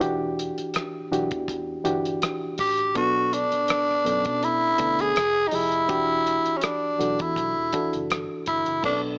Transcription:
0.00 E1 E3 D4 F#4 G4, kick, closed hi-hat
0.39 closed hi-hat
0.58 muted fingered electric bass stroke, closed hi-hat
0.74 cross-stick, closed hi-hat
1.11 B1 E3 D4 F#4 G4, closed hi-hat
1.31 E2, kick, closed hi-hat
1.48 kick, closed hi-hat
1.84 G1 E3 D4 F#4 G4, closed hi-hat
2.05 closed hi-hat
2.22 cross-stick, closed hi-hat
2.58 A1 G4, kick, open hi-hat
2.78 closed hi-hat
2.95 B1 B2 B3 D4 F#4 A4, kick, closed hi-hat
3.33 D4, closed hi-hat
3.52 muted fingered electric bass stroke, closed hi-hat
3.68 cross-stick, closed hi-hat
3.90 cross-stick
4.05 F#2 B2 B3 C#4 A4, closed hi-hat
4.12 D4
4.25 B2, kick, closed hi-hat
4.43 E4, closed hi-hat
4.78 D2 B2 B3 D4 A4, kick, closed hi-hat
4.99 G#4, closed hi-hat
5.16 F1, cross-stick, closed hi-hat
5.47 D#4, open hi-hat
5.52 F1 F3 E4 G4 G#4 D#5
5.72 closed hi-hat
5.88 E1 E3 D4 F#4 G4, kick, closed hi-hat
6.27 closed hi-hat
6.46 muted fingered electric bass stroke, closed hi-hat
6.57 C#4
6.61 D4, cross-stick, closed hi-hat
6.99 B1 E3 D4 F#4 A4, closed hi-hat
7.19 E2 E4, kick, closed hi-hat
7.36 B1, kick, closed hi-hat
7.57 E1
7.73 E3 D4 F#4 A4, kick, closed hi-hat
7.93 F#1, closed hi-hat
8.10 G1, cross-stick, closed hi-hat
8.46 G1 E4, kick, closed hi-hat
8.66 F#1, closed hi-hat
8.83 B1 B2 B3 C#4 D4 A4, kick, crash
8.90 D4

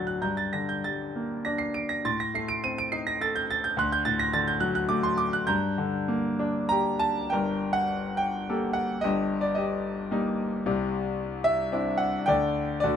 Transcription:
Already playing: D2 A2 D3 F#3 F#6 G6 A6 A#6
0.07 F#6
0.22 G2 A#5 G6
0.37 A6
0.53 D3 A#6
0.69 G6
0.84 G3 A6
1.16 A#3
1.45 D4 A#6
1.58 C7
1.74 D7
1.89 A#6
2.05 A2 C6 A6
2.20 A#6
2.34 A3 C7
2.48 D7
2.64 C4 D#7
2.78 D7
2.92 D#4 C7
3.07 A#6
3.21 A4 A6
3.36 G6
3.51 A6
3.64 G6
3.77 D2 C6 F#6
3.92 G6
4.05 A2 A6
4.19 A#6
4.33 D3 A6
4.47 G6
4.60 F#3 F#6
4.75 F#6
4.89 A3 D6
5.03 C6
5.18 D6
5.33 F#6
5.47 G2 A#5 G6
5.78 D3
6.08 A#3
6.39 D4
6.69 G4 A#5
6.99 A5
7.30 G1 G2 A#4 G5
7.73 F#5
8.17 G5
8.49 A#3 G4 A4
8.73 F#5
9.01 G1 G2 G4 D#5
9.41 D5
9.55 G4 D#5
10.11 G3 A#3 D#4
10.66 C2 C3
11.44 E5
11.72 C4 D4 E4
11.98 F#5
12.26 D2 D3 D5 G5
12.80 D2 D3 F#4 D5

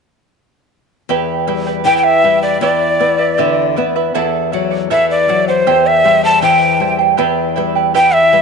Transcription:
1.09 E2 E4 G4 B4 E5 G5
1.47 G3 E4 B4 E5 G5
1.67 E4 B4 G5
1.85 E3 E4 G4 B4 E5 G5
1.98 G5
2.04 E5
2.24 G3 E4 B4 E5 G5
2.43 E4 B4 D5 G5
2.61 E2 E4 G4 B4 D5 E5
2.99 B3 E4 B4 D5 E5
3.18 E4 B4 E5
3.38 D3 E4 G4 B4 D5 E5
3.76 B3 E4 B4 D5 E5
3.96 E4 B4 E5
4.14 E2 E4 A4 D5 E5 F#5
4.52 F#3 E4 D5 E5 F#5
4.71 E4 D5 F#5
4.90 E3 E4 A4 D5 E5 F#5
5.11 D5
5.28 F#3 E4 D5 E5 F#5
5.48 E4 C5 D5 F#5
5.67 E2 E4 G4 C5 E5 G5
5.87 E5
6.04 G3 E4 C5 E5 G5
6.23 E4 C5 G5 A5
6.42 E3 E4 G4 C5 E5 G5
6.80 G3 E4 C5 E5 G5
6.99 E4 C5 G5
7.17 E2 E4 G4 B4 E5 G5
7.56 G3 E4 B4 E5 G5
7.75 E4 B4 G5
7.94 E3 E4 G4 B4 E5 G5
8.14 E5
8.32 G3 E4 B4 E5 G5

